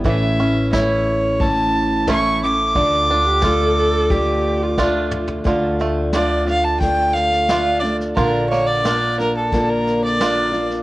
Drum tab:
SD |----o-------o---|----o-------o---|o-o-o-o-o-ooo-oo|o-o-o-o-o-o-o-oo|
T2 |----------------|--------------o-|----------------|----------------|
FT |----------------|---------------o|----------------|----------------|
BD |o---o---o---o---|o---o---o---o---|o-------o-------|o-------o-------|